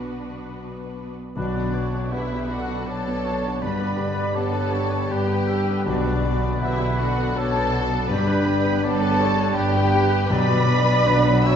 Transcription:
Already playing: grand piano B1 B3 F#4 B4, cello section B2, harp B2 D3 B3 B4 F#5, viola section B3 D4, violin section F#4 B4
0.57 harp B4
1.35 double bass section B1, grand piano B1, harp B2, cello section B2, french horn section B3, viola section D4 F#4, violin section D4 D5, flute F#4, oboe B4
1.39 french horn section D3
1.56 viola section B3 D4
1.74 viola section D4 F#4, oboe C#5
1.93 viola section B3 D4
2.10 double bass section B1, cello section B2, harp B3, grand piano B3 B4 F#5, viola section D4 F#4, violin section E4 E5, flute G4, oboe B4
2.31 viola section B3 D4
2.48 viola section D4 F#4, violin section F#4, harp F#4, flute A4
2.52 violin section F#5
2.70 viola section B3 D4
2.84 double bass section B1, cello section B2, violin section A4 A5, harp B4, flute C#5, oboe D5
2.90 viola section D4 F#4
3.08 viola section B3 D4
3.24 viola section D4 F#4, harp F#4, oboe C#5
3.47 viola section B3 D4
3.61 double bass section G1, cello section G2, harp G2, grand piano G2, french horn section G3, viola section D4 G4, oboe B4, violin section B4 B5, flute D5
3.81 viola section B3 B4
3.98 harp D3, viola section D4 G4
4.16 viola section B3 B4
4.34 double bass section G1, cello section G2, harp B3, grand piano B3 G4 B4, viola section D4 G4, violin section A4 A5, flute C#5, oboe D5
4.53 viola section B3 B4
4.72 viola section D4 G4, harp G4, oboe C#5
4.90 viola section B3 B4
5.09 double bass section G1, cello section G2, viola section D4 G4, violin section G4 G5, flute B4, oboe B4, harp B4
5.29 viola section B3 B4
5.47 viola section D4 G4, harp G4, oboe A4
5.68 viola section B3 B4
5.85 double bass section B1, grand piano B1, cello section B2, harp B2, french horn section D3 B3, violin section D4 D5, viola section D4 F#4, flute F#4, oboe B4
6.05 viola section B3 D4
6.24 harp D3, viola section D4 F#4
6.44 viola section B3 D4
6.59 double bass section B1, cello section B2, grand piano B3 F#5, viola section D4 F#4, violin section E4, flute G4
6.63 harp B3, grand piano B4, violin section E5
6.80 viola section B3 D4
6.97 viola section D4 F#4, violin section F#4 F#5, harp F#4, flute A4
7.18 viola section B3 D4
7.35 double bass section B1, cello section B2, viola section D4 F#4, violin section A4 A5, oboe A4, harp B4, flute C#5
7.55 viola section B3 D4
7.73 viola section D4 F#4, harp F#4
7.91 viola section B3 D4
8.08 double bass section G1, harp G2, cello section G2, grand piano G2, french horn section G3 D4, viola section D4 G4, violin section B4 B5, flute D5
8.12 oboe G4
8.28 viola section B3 B4
8.46 harp D3, viola section D4 G4
8.64 viola section B3 B4
8.82 double bass section G1, cello section G2, harp B3, grand piano B3 G4 B4, viola section D4 G4, violin section A4 A5, flute C#5, oboe D5
9.02 viola section B3 B4
9.21 viola section D4 G4, harp G4, oboe C#5
9.39 viola section B3 B4
9.54 double bass section G1, cello section G2, viola section D4 G4, violin section G4 G5, oboe B4, flute B4, harp B4
9.75 viola section B3 B4
9.93 viola section D4 G4, harp G4
10.11 viola section B3 B4
10.28 grand piano B1, double bass section B1, cello section B2, harp B2, french horn section F#3 D4, viola section F#3 D4, violin section B4 B5, flute D5, oboe D5
10.50 viola section B3 F#4
10.67 viola section F#3 D4, harp F#3
10.86 viola section B3 F#4
11.05 double bass section B1, cello section B2, viola section F#3 D4, grand piano F#3 D4 B4, oboe B4
11.26 viola section B3 F#4
11.42 viola section F#3 D4, harp D4, violin section E5 E6, flute G5
11.47 oboe C#5

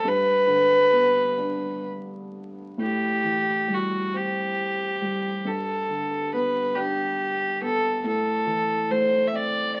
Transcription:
0.05 upright piano G2, fiddle B4
0.47 upright piano D3
0.93 upright piano B3
1.38 upright piano D4
2.78 upright piano A2, fiddle G4
3.24 upright piano E3
3.68 upright piano G3
3.74 fiddle F#4
4.14 upright piano C4, fiddle G4
5.02 upright piano G3
5.45 upright piano G2, fiddle A4
5.88 upright piano D3
6.33 upright piano B3, fiddle B4
6.75 upright piano D4, fiddle G4
7.62 upright piano B3, fiddle A4
8.04 upright piano A2, fiddle A4
8.46 upright piano E3
8.90 upright piano A3, fiddle C5
9.27 fiddle E5
9.32 upright piano C4, fiddle D5
9.76 fiddle D5

